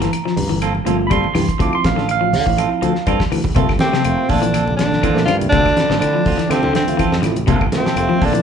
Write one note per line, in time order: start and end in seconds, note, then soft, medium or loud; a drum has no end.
0.00 0.15 E3 medium
0.00 0.12 C4 soft
0.00 0.12 F4 soft
0.00 0.12 A4 medium
0.00 0.59 A#5 medium
0.00 snare soft
0.00 closed hi-hat medium
0.13 muted clean electric guitar stroke soft
0.13 closed hi-hat medium
0.13 claves medium
0.25 0.39 F3 medium
0.25 muted clean electric guitar stroke medium
0.25 snare soft
0.37 0.47 G2 medium
0.37 open hi-hat medium
0.37 high conga medium
0.37 low conga medium
0.49 0.78 G1 medium
0.49 0.63 E3 medium
0.49 muted clean electric guitar stroke medium
0.49 high conga medium
0.62 0.75 A#3 medium
0.62 0.75 C4 loud
0.62 0.75 F4 medium
0.62 0.74 A4 loud
0.62 closed hi-hat medium
0.62 claves medium
0.75 muted clean electric guitar stroke soft
0.75 high conga medium
0.85 1.25 G1 medium
0.85 1.00 F3 medium
0.85 1.07 A3 soft
0.85 1.07 A#3 soft
0.85 0.99 A#3 medium
0.85 1.08 C4 soft
0.85 0.99 C4 medium
0.85 1.08 F4 medium
0.85 0.99 F4 medium
0.85 0.98 A4 medium
0.85 closed hi-hat medium
0.99 muted clean electric guitar stroke soft
1.07 1.24 G3 medium
1.07 1.10 B5 medium
1.07 high conga medium
1.11 1.26 A#3 medium
1.11 1.26 C4 medium
1.11 1.26 F4 medium
1.11 1.26 A4 medium
1.11 1.59 C6 loud
1.11 kick medium
1.11 closed hi-hat medium
1.11 claves medium
1.24 high conga medium
1.35 1.45 G2 medium
1.35 1.48 E3 medium
1.35 muted clean electric guitar stroke soft
1.35 open hi-hat medium
1.35 high conga medium
1.35 low conga medium
1.35 claves medium
1.48 muted clean electric guitar stroke soft
1.48 muted fingered electric bass stroke soft
1.48 kick medium
1.48 closed hi-hat medium
1.59 1.70 D2 medium
1.59 1.93 F3 medium
1.59 1.75 C4 medium
1.59 1.93 C4 soft
1.59 1.93 E4 soft
1.59 1.75 F4 medium
1.59 1.75 A4 medium
1.59 1.73 D6 medium
1.59 muted clean electric guitar stroke medium
1.59 kick medium
1.59 closed hi-hat medium
1.73 1.84 C6 loud
1.73 claves medium
1.84 2.35 A1 medium
1.84 2.09 F5 medium
1.84 muted clean electric guitar stroke soft
1.84 kick medium
1.84 snare medium
1.84 closed hi-hat medium
1.84 high conga loud
1.96 2.10 D3 medium
1.96 2.08 F4 soft
1.96 2.08 A4 medium
1.96 snare soft
2.09 3.05 F5 loud
2.09 muted clean electric guitar stroke soft
2.09 closed hi-hat medium
2.09 claves medium
2.21 2.34 F3 medium
2.21 muted clean electric guitar stroke medium
2.33 2.44 D3 medium
2.33 open hi-hat medium
2.33 high conga medium
2.33 low conga medium
2.46 2.65 A1 medium
2.46 2.59 E3 medium
2.46 muted clean electric guitar stroke soft
2.46 kick medium
2.58 2.80 F3 soft
2.58 2.71 C4 medium
2.58 2.80 C4 soft
2.58 2.80 E4 soft
2.58 2.71 F4 medium
2.58 2.70 A4 medium
2.58 closed hi-hat medium
2.58 claves medium
2.72 muted clean electric guitar stroke medium
2.82 2.92 D2 loud
2.82 2.96 F3 medium
2.82 2.95 C4 medium
2.82 2.95 A4 medium
2.82 closed hi-hat medium
2.95 muted clean electric guitar stroke soft
2.95 snare soft
3.07 3.17 G2 medium
3.07 3.20 G3 medium
3.07 3.22 C4 medium
3.07 3.22 F4 medium
3.07 3.22 A4 loud
3.07 kick medium
3.07 closed hi-hat medium
3.07 high conga medium
3.07 claves medium
3.19 kick medium
3.19 snare medium
3.19 high conga medium
3.32 3.42 D2 medium
3.32 3.45 E3 medium
3.32 muted clean electric guitar stroke soft
3.32 open hi-hat medium
3.32 claves medium
3.44 muted clean electric guitar stroke soft
3.44 muted fingered electric bass stroke soft
3.44 kick medium
3.44 low conga medium
3.55 3.75 G1 loud
3.55 3.69 C3 medium
3.55 3.66 A3 medium
3.55 3.66 A#3 medium
3.55 3.71 C4 medium
3.55 3.66 C4 medium
3.55 3.71 F4 medium
3.55 3.66 F4 medium
3.55 3.71 A4 medium
3.55 muted clean electric guitar stroke medium
3.55 kick loud
3.55 closed hi-hat medium
3.55 low conga medium
3.69 kick medium
3.69 snare soft
3.69 claves medium
3.79 4.31 C3 medium
3.79 3.90 A3 medium
3.79 3.90 A#3 medium
3.79 4.31 C4 medium
3.79 3.90 C4 medium
3.79 3.91 G4 loud
3.79 muted clean electric guitar stroke soft
3.79 snare medium
3.79 closed hi-hat soft
3.79 high conga loud
3.93 4.06 C3 medium
3.93 4.03 C4 soft
3.93 4.04 F4 soft
3.93 4.04 A4 soft
3.93 snare medium
4.04 4.15 F1 medium
4.04 4.43 A3 medium
4.04 4.43 A#3 medium
4.04 4.43 C4 medium
4.04 4.43 F4 medium
4.04 closed hi-hat medium
4.04 claves medium
4.18 muted clean electric guitar stroke soft
4.29 4.97 A#1 medium
4.29 4.76 D3 medium
4.29 4.42 A#3 medium
4.29 4.76 D4 loud
4.29 4.42 F4 medium
4.29 4.41 A4 medium
4.29 kick medium
4.29 open hi-hat medium
4.29 high conga medium
4.42 4.55 E3 medium
4.42 muted clean electric guitar stroke soft
4.42 closed hi-hat medium
4.53 4.67 A#3 medium
4.53 4.67 C4 medium
4.53 4.66 A4 medium
4.53 muted clean electric guitar stroke medium
4.53 closed hi-hat medium
4.53 high conga medium
4.53 claves medium
4.67 muted clean electric guitar stroke soft
4.67 low conga medium
4.76 5.23 D3 medium
4.76 4.92 D3 medium
4.76 5.23 D4 medium
4.76 snare medium
4.76 closed hi-hat medium
4.91 muted clean electric guitar stroke soft
4.91 snare soft
4.91 high conga medium
5.03 5.16 E3 medium
5.03 5.18 A#3 medium
5.03 5.19 C4 medium
5.03 5.19 F4 medium
5.03 5.19 A4 medium
5.03 kick medium
5.03 closed hi-hat medium
5.03 high conga medium
5.03 claves medium
5.14 5.25 A#1 medium
5.14 5.48 A3 medium
5.14 5.48 A#3 medium
5.14 5.48 C4 medium
5.14 5.48 D4 medium
5.14 snare medium
5.25 5.46 G2 medium
5.25 5.41 D3 medium
5.25 5.37 F3 medium
5.25 5.36 F4 medium
5.25 muted clean electric guitar stroke soft
5.25 closed hi-hat medium
5.25 high conga medium
5.25 claves medium
5.41 muted clean electric guitar stroke soft
5.41 closed hi-hat medium
5.41 low conga medium
5.49 5.72 D2 medium
5.49 5.65 C3 medium
5.49 5.96 D3 medium
5.49 5.67 C4 medium
5.49 5.96 D4 loud
5.49 kick loud
5.49 closed hi-hat medium
5.49 low conga medium
5.53 5.68 F4 medium
5.53 5.68 A4 medium
5.66 kick medium
5.66 snare soft
5.66 claves medium
5.77 muted clean electric guitar stroke soft
5.77 snare medium
5.77 closed hi-hat medium
5.77 high conga loud
5.90 5.99 A1 medium
5.90 6.03 D3 medium
5.90 6.01 F4 soft
5.90 6.01 A4 medium
5.90 snare medium
5.99 6.50 D3 medium
5.99 6.20 D3 medium
5.99 6.20 F3 medium
5.99 6.20 A3 medium
5.99 6.20 C4 medium
5.99 6.52 D4 medium
5.99 6.20 E4 medium
5.99 muted clean electric guitar stroke soft
5.99 closed hi-hat medium
5.99 claves medium
6.14 6.27 F3 medium
6.14 muted clean electric guitar stroke medium
6.25 6.36 D2 medium
6.25 6.39 C4 medium
6.25 6.39 F4 medium
6.25 muted clean electric guitar stroke medium
6.25 kick medium
6.25 open hi-hat medium
6.25 high conga medium
6.38 6.51 E3 medium
6.38 muted fingered electric bass stroke soft
6.38 muted clean electric guitar stroke soft
6.38 snare soft
6.38 closed hi-hat medium
6.48 6.72 C3 medium
6.48 6.60 D3 loud
6.48 6.64 F3 medium
6.48 6.64 A3 medium
6.48 6.64 C4 medium
6.48 6.75 C4 loud
6.48 6.63 C4 medium
6.48 6.64 F4 medium
6.48 6.64 G4 medium
6.48 6.63 A4 medium
6.48 snare soft
6.48 closed hi-hat medium
6.48 high conga medium
6.48 claves medium
6.63 6.82 D3 medium
6.63 muted clean electric guitar stroke soft
6.63 low conga medium
6.73 7.19 C3 medium
6.73 6.87 D3 medium
6.73 7.21 C4 medium
6.73 snare medium
6.73 closed hi-hat soft
6.87 7.01 F3 medium
6.87 7.01 A3 medium
6.87 7.01 C4 medium
6.87 7.01 F4 loud
6.87 muted clean electric guitar stroke soft
6.87 closed hi-hat medium
6.87 high conga medium
6.97 7.11 E3 medium
6.97 7.14 C4 medium
6.97 7.15 F4 medium
6.97 7.15 A4 medium
6.97 kick medium
6.97 closed hi-hat medium
6.97 high conga medium
6.97 claves medium
7.12 7.21 F2 medium
7.12 snare medium
7.23 7.50 A1 medium
7.23 7.34 F3 medium
7.23 7.34 A3 medium
7.23 7.34 C4 medium
7.23 7.34 E4 medium
7.23 muted clean electric guitar stroke soft
7.23 snare soft
7.23 closed hi-hat medium
7.23 high conga loud
7.23 claves medium
7.36 muted clean electric guitar stroke soft
7.36 closed hi-hat soft
7.36 low conga medium
7.47 7.67 G1 loud
7.47 7.61 C3 medium
7.47 7.58 A3 medium
7.47 7.63 A#3 medium
7.47 7.58 A#3 medium
7.47 7.63 C4 medium
7.47 7.58 C4 medium
7.47 7.63 F4 medium
7.47 7.58 F4 medium
7.47 7.63 A4 medium
7.47 kick medium
7.47 closed hi-hat medium
7.47 low conga medium
7.61 kick medium
7.61 claves medium
7.72 7.83 A3 medium
7.72 7.82 A#3 medium
7.72 7.83 C4 medium
7.72 7.83 F4 medium
7.72 muted clean electric guitar stroke soft
7.72 snare medium
7.72 closed hi-hat medium
7.72 high conga loud
7.77 8.27 C3 medium
7.77 8.26 C4 medium
7.85 7.96 C4 soft
7.85 7.96 F4 soft
7.85 7.96 A4 medium
7.85 snare medium
7.96 8.07 F1 loud
7.96 8.35 A3 medium
7.96 8.35 A#3 medium
7.96 8.36 C4 medium
7.96 8.36 F4 medium
7.96 muted clean electric guitar stroke soft
7.96 closed hi-hat medium
7.96 claves medium
8.09 8.23 F3 medium
8.09 muted clean electric guitar stroke soft
8.09 high conga medium
8.21 8.42 A#1 medium
8.21 8.34 A#3 medium
8.21 8.34 C4 medium
8.21 8.42 D4 loud
8.21 8.34 F4 medium
8.21 8.33 A4 loud
8.21 kick medium
8.21 open hi-hat medium
8.21 high conga medium
8.25 8.42 D3 medium
8.33 8.42 E3 medium
8.33 muted clean electric guitar stroke soft
8.33 closed hi-hat medium